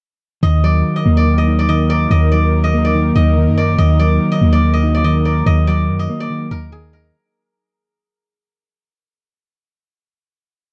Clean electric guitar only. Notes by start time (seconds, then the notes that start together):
0.43 D#3
0.64 F#3
1.06 A#3
1.27 D#3
1.48 D#4
1.69 D#3
1.90 A#4
2.11 D#3
2.32 F#3
2.74 A#3
2.95 D#3
3.16 D#4
3.37 D#3
3.58 D#5
3.79 D#3
4.00 F#3
4.42 A#3
4.62 D#3
4.83 D#4
5.04 D#3
5.25 A#4
5.46 D#3
5.67 F#3
6.09 A#3
6.30 D#3
6.51 D#4
6.72 D#3
6.93 D#5